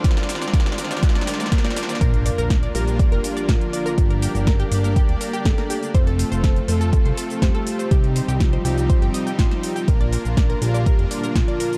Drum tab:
HH |x-x-o-x-x-x-o-x-x-x-o-x-x-x-o-x-|x-x-o-x-x-x-o-x-x-x-o-x-x-x-o-x-|x-x-o-x-x-x-o-x-x-x-o-x-x-x-o-x-|x-x-o-x-x-x-o-x-x-x-o-x-x-x-o-x-|
SH |x---x-x-x---x-x-x---x-x-x---x-x-|x---x-x-x---x-x-x---x-x-x---x-x-|x---x-x-x---x-x-x---x-x-x---x-x-|x---x-x-x---x-x-x---x-x-x---x-x-|
SD |oooooooooooooooooooooooooooooooo|--------o---------------o-------|--------o---------------o-o-----|--------o---------------o-------|
BD |o-------o-------o-------o-------|o-------o-------o-------o-------|o-------o-------o-------o-------|o-------o-------o-------o-------|

HH |x-x-o-x-x-x-o-x-x-x-o-x-x-x-o-x-|x-x-o-x-x-x-o-x-x-x-o-x-x-x-o-x-|
SH |x---x-x-x---x-x-x---x-x-x---x-x-|x---x-x-x---x-x-x---x-x-x---x-x-|
SD |--------o---------------o-o-----|--------o---------------o-------|
BD |o-------o-------o-------o-------|o-------o-------o-------o-------|